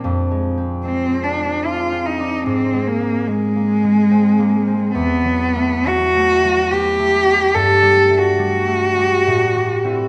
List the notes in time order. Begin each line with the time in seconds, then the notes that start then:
Already playing: F3 C4 D4
0.04 F2
0.31 G#3
0.58 C4
0.85 G#3 C4
1.12 C4
1.24 D4
1.38 G#3
1.65 D4 F4
1.92 C4
2.06 D#4
2.19 D4
2.46 G#2 C4
2.73 G#3
2.87 A#3
3.01 A#3
3.27 G#3
3.56 A#3
3.84 G#3
4.11 C4
4.39 A#3
4.67 C4
4.94 E2 B3
5.25 F#3
5.56 A3
5.86 F#3 F#4
6.16 A3
6.44 F#3
6.72 B3 G4
6.99 A3
7.26 B3
7.54 G2 A4
7.82 G3
8.10 A3
8.18 F#4
8.39 G3
8.68 A3
8.97 G3
9.27 A2
9.56 G3
9.84 C4 E4